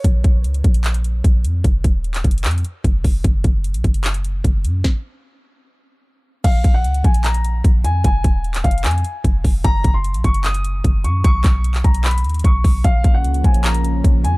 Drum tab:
CC |------------------------------------------------------------------------------------------------|------------------------------------------------------------------------------------------------|------------------------------------------------------------------------------------------------|------------------------------------------------------------------------------------------------|
HH |x-----------x-----------x-----x-----x-----x-----x-----x-----x-----------x-----------x-----------|x-----------x-----------x-----x-----x---x---x---x---x---x---x-----------x-----------o-----------|x-----------x-----------x-----x-----x-----x-----x-----x-----x-----------x-----------x-----------|------------------------------------------------------------------------------------------------|
CP |------------------------------------------------x-----------------------------------------------|------------------------------x-----------------x-----------------------------------------------|------------------------------------------------x-----------------------------------------------|------------------------------------------------------------------------------------------------|
SD |------------------------------------------------------------------------------------------------|------------------------------------------------------------------------------------------------|------------------------------------------------------------------------------------------------|o-----------------------------------------------------------------------------------------------|
BD |o-----------o-----------------------o-----------------------------------o-----------------------|o-----------o-----------------------o-----------------------------------o-----------o-----------|o-----------o-----------------------o-----------------------------------o-----------------------|o-----------------------------------------------------------------------------------------------|

CC |x-----------------------------------------------------------------------------------------------|------------------------------------------------------------------------------------------------|------------------------------------------------------------------------------------------------|------------------------------------------------------------------------------------------------|
HH |x-----------x-----------x-----x-----x-----x-----x-----x-----x-----------x-----------x-----------|x-----------x-----------x-----x-----x---x---x---x---x---x---x-----------x-----------o-----------|x-----------x-----------x-----x-----x-----x-----x-----x-----x-----------x-----------x-----------|x-----------x-----------x-----x-----x-----x-----x---x---x---x--x--x--x--x-----------o-----------|
CP |------------------------------------------------x-----------------------------------------------|------------------------------x-----------------x-----------------------------------------------|------------------------------------------------x-----------------------------------------------|------------x-----------------x-----------------x-----------------------------------------------|
SD |------------------------------------------------------------------------------------------------|------------------------------------------------------------------------------------------------|------------------------------------------------------------------------------------------------|------------------------------------------------------------------------------------------------|
BD |o-----------o-----------------------o-----------------------------------o-----------------------|o-----------o-----------------------o-----------------------------------o-----------o-----------|o-----------o-----------------------o-----------------------------------o-----------------------|o-----------o-----------------------o-----------------------------------o-----------o-----------|

CC |------------------------------------------------------------------------------------------------|
HH |x-----------x-----------x-----x-----x-----x-----x-----x-----x-----------x-----------x-----------|
CP |------------------------------------------------x-----------------------------------------------|
SD |------------------------------------------------------------------------------------------------|
BD |o-----------o-----------------------o-----------------------------------o-----------------------|